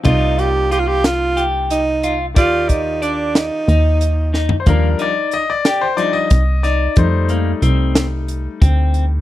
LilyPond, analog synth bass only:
\new Staff \with { instrumentName = "Analog synth bass" } { \clef bass \time 7/8 \key ees \lydian \tempo 4 = 91 c,2.~ c,8 | ees,2 ees,4. | ees,8 r2 c,4 | f,4 c,4. d,4 | }